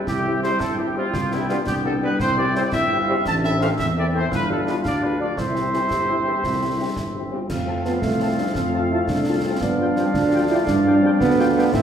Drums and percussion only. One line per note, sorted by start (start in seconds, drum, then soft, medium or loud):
0.07 concert bass drum medium
0.07 snare medium
0.44 snare medium
0.60 concert bass drum medium
0.60 snare medium
1.14 concert bass drum medium
1.14 snare medium
1.31 snare soft
1.49 snare soft
1.67 concert bass drum medium
1.67 snare medium
2.20 concert bass drum medium
2.20 snare medium
2.55 snare medium
2.72 concert bass drum medium
2.72 snare medium
3.26 concert bass drum medium
3.26 snare medium
3.26 crash soft
3.44 snare medium
3.61 snare medium
3.79 concert bass drum medium
3.79 snare medium
4.32 concert bass drum medium
4.32 snare medium
4.67 snare medium
4.85 concert bass drum medium
4.85 snare medium
5.37 concert bass drum medium
5.37 snare medium
5.56 snare soft
5.73 snare soft
5.91 concert bass drum medium
5.91 snare medium
6.44 concert bass drum medium
6.44 snare medium
6.96 concert bass drum medium
6.96 snare medium
7.50 concert bass drum medium
7.50 snare medium
7.50 crash soft
7.85 snare medium
8.02 concert bass drum medium
8.02 snare medium
8.55 concert bass drum medium
8.55 snare medium
9.08 concert bass drum medium
9.08 snare medium
9.61 concert bass drum medium
9.61 snare medium
9.96 snare medium
10.14 concert bass drum medium
10.14 snare medium
10.67 concert bass drum medium
10.67 snare medium
11.21 concert bass drum medium
11.21 snare medium
11.74 concert bass drum medium
11.74 snare medium
11.74 crash soft